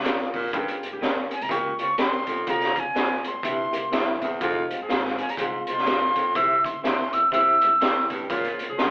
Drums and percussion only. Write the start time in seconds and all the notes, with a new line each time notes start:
0.05 snare, closed hi-hat
0.33 kick, open hi-hat
0.53 kick, closed hi-hat
0.68 closed hi-hat
0.83 closed hi-hat
1.02 snare, closed hi-hat
1.31 closed hi-hat
1.41 closed hi-hat
1.49 kick, closed hi-hat
1.79 closed hi-hat
1.98 snare, closed hi-hat
2.27 kick, closed hi-hat
2.47 kick, closed hi-hat
2.61 snare, closed hi-hat
2.76 kick, closed hi-hat
2.96 snare, closed hi-hat
3.24 closed hi-hat
3.43 kick, closed hi-hat
3.73 closed hi-hat
3.92 snare, closed hi-hat
4.22 kick, closed hi-hat
4.41 kick, closed hi-hat
4.70 closed hi-hat
4.90 snare, closed hi-hat
5.05 snare
5.18 closed hi-hat
5.29 closed hi-hat
5.37 kick, closed hi-hat
5.67 closed hi-hat
5.78 snare
5.86 snare, closed hi-hat
6.15 kick, closed hi-hat
6.35 kick, closed hi-hat
6.65 kick, closed hi-hat
6.84 snare, closed hi-hat
7.13 closed hi-hat
7.32 kick, closed hi-hat
7.61 closed hi-hat
7.81 snare, closed hi-hat
8.10 kick, closed hi-hat
8.30 kick, closed hi-hat
8.44 closed hi-hat
8.59 closed hi-hat
8.79 snare, closed hi-hat